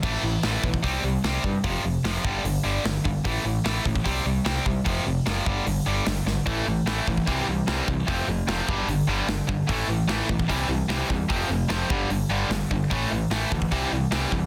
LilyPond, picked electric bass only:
\new Staff \with { instrumentName = "Picked electric bass" } { \clef bass \time 4/4 \key a \minor \tempo 4 = 149 a,,8 a,,8 a,,8 b,,8 c,8 c,8 c,8 g,8 | f,,8 f,,8 f,,8 g,,8 g,,8 g,,8 g,,8 g,,8 | a,,8 a,,8 a,,8 a,,8 c,8 c,8 c,8 c,8 | f,,8 f,,8 fis,,8 g,,8 g,,8 g,,8 g,,8 gis,,8 |
a,,8 a,,8 a,,8 a,,8 c,8 c,8 c,8 c,8 | f,,8 f,,8 f,,8 g,,8 g,,8 g,,8 g,,8 g,,8 | a,,8 a,,8 a,,8 b,,8 c,8 c,8 c,8 e,8 | f,,8 f,,8 f,,8 g,,8 g,,8 g,,8 g,,8 g,,8 |
a,,8 a,,8 a,,8 d,8 c,8 c,8 c,8 e,8 | }